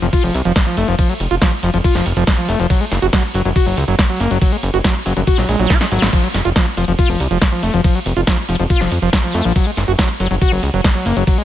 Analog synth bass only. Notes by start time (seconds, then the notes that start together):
0.02 F1
0.24 F1
0.34 C2
0.45 F1
0.77 F1
0.88 F1
1.20 F1
1.31 F1
1.63 F1
1.74 F1
1.95 F1
2.06 F1
2.17 F1
2.49 F1
2.59 F1
2.92 F#1
3.02 F#1
3.34 F#1
3.45 F#1
3.67 F#1
3.77 C#2
3.88 F#1
4.20 F#1
4.31 F#1
4.63 F#1
4.74 F#1
5.06 F#1
5.17 F#1
5.38 A#1
5.49 A#1
5.59 A#1
5.92 G#1
6.02 G#1
6.34 F1
6.45 F1
6.77 F1
6.88 F1
7.09 F1
7.20 C2
7.31 F1
7.63 F1
7.74 F1
8.06 F1
8.17 F1
8.49 F1
8.59 F1
8.81 F1
8.92 F2
9.02 F1
9.34 F2
9.45 A#1
9.77 F#1
9.88 F#1
10.20 F#1
10.31 F#1
10.52 F#1
10.63 C#2
10.74 F#1
11.06 F#1
11.17 F#1